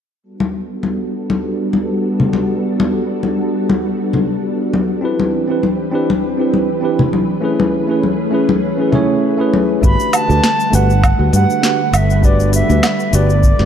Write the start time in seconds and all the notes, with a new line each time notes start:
0.23 G3 B3 D4 F#4 A4
0.40 high conga
0.83 high conga
1.30 high conga
1.73 high conga
2.20 low conga
2.33 high conga
2.80 high conga
3.23 high conga
3.69 high conga
4.13 high conga, low conga
4.73 high conga
5.01 E3 C4 D4 E4 G4 B4
5.19 high conga
5.48 C4 D4 E4 G4 B4
5.63 high conga
5.91 C4 D4 E4 G4 B4
6.10 high conga
6.37 C4 D4 E4 G4 B4
6.54 high conga
6.81 C4 D4 E4 G4 B4
6.99 low conga
7.13 high conga
7.41 A3 C#4 E4 G#4
7.45 B4
7.60 high conga
7.87 A3 C#4 E4 G#4 B4
8.03 high conga
8.31 A3 C#4 E4 G#4 B4
8.49 high conga
8.77 A3 C#4 E4 G#4 B4
8.91 A3 C#4 E4 G#4 C#5, high conga, low conga
9.37 A3 C#4 E4 G#4 B4
9.54 high conga
9.81 G1 D3 G3 A3 D4 F#4 G4 B4 F#5 B5, kick, cabasa
9.85 B4
10.00 cabasa
10.13 A5, open hi-hat, cabasa, low woodblock
10.27 D2 A3 D4 F#4 G4, cabasa
10.31 B4
10.44 snare, cabasa
10.60 cabasa
10.71 G1 A3 D4 F#4 G4 F#5, open hi-hat, cabasa
10.75 B4
10.90 cabasa
11.03 kick, cabasa, low woodblock
11.17 D2 A3 D4 F#4 G4 B4
11.33 G2 F#5, open hi-hat, cabasa
11.50 cabasa
11.61 A3 D4 F#4 G4 B4, snare, cabasa
11.93 G1 E5, open hi-hat, cabasa, low woodblock
12.10 cabasa
12.21 A3 D4 F#4 G4 B4 D5, kick, cabasa
12.40 cabasa
12.53 E5, open hi-hat, cabasa
12.68 D2 A3 D4 F#4 G4, cabasa
12.72 B4
12.83 snare, cabasa, low woodblock
13.00 cabasa
13.11 G1 A3 D4 F#4 G4 B4 D5, open hi-hat, cabasa
13.30 cabasa
13.43 kick, cabasa
13.57 G1 A3 D4 F#4 G4 B4, snare